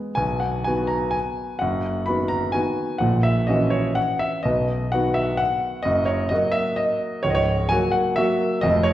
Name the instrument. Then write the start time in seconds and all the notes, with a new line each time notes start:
grand piano
Already playing: G#3 B3 G#4
0.15 B1 B2 G#5
0.40 F#5
0.64 D#3 B3 F#4 G#5
0.87 A#5
1.11 G#5
1.59 F#1 F#2 F#5
2.06 D#3 B3 F#4 B5
2.28 A#5
2.52 D#3 B3 F#4 G#5
2.98 A#1 A#2 F#5
3.23 E5
3.47 E3 C#4 F#4 D#5
3.70 C#5
3.95 F#5
4.19 E5
4.43 B1 B2 D#5
4.92 D#3 B3 F#4 F#5
5.14 E5
5.37 F#5
5.83 F#1 F#2 D#5
6.05 C#5
6.29 F#3 A#3 F#4 D#5
6.52 E5
6.76 D#5
7.23 C#1 C#2 C#5
7.30 D#5
7.35 C#5
7.69 F#3 A#3 F#4 G#5
7.92 F#5
8.16 F#3 A#3 F#4 E5
8.61 F1 F2 D#5
8.83 C#5